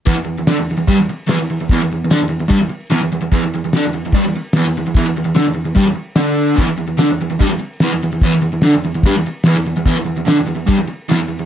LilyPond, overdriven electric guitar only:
\new Staff \with { instrumentName = "Overdriven electric guitar" } { \clef bass \time 4/4 \key e \minor \tempo 4 = 147 <e, e>16 e,16 e,16 e,16 <d d'>16 e,16 e,16 e,16 <g, g>16 e,16 r8 <e, e>16 e,16 e,16 e,16 | <e, e>16 e,16 e,16 e,16 <d d'>16 e,16 e,16 e,16 <g, g>16 e,16 r8 <e, e>16 e,16 e,16 e,16 | <e, e>16 e,16 e,16 e,16 <d d'>16 e,16 e,16 e,16 <g, g>16 e,16 r8 <e, e>16 e,16 e,16 e,16 | <e, e>16 e,16 e,16 e,16 <d d'>16 e,16 e,16 e,16 <g, g>16 e,16 r8 <d d'>4 |
<e, e>16 e,16 e,16 e,16 <d d'>16 e,16 e,16 e,16 <g, g>16 e,16 r8 <e, e>16 e,16 e,16 e,16 | <e, e>16 e,16 e,16 e,16 <d d'>16 e,16 e,16 e,16 <g, g>16 e,16 r8 <e, e>16 e,16 e,16 e,16 | <e, e>16 e,16 e,16 e,16 <d d'>16 e,16 e,16 e,16 <g, g>16 e,16 r8 <e, e>16 e,16 e,16 e,16 | }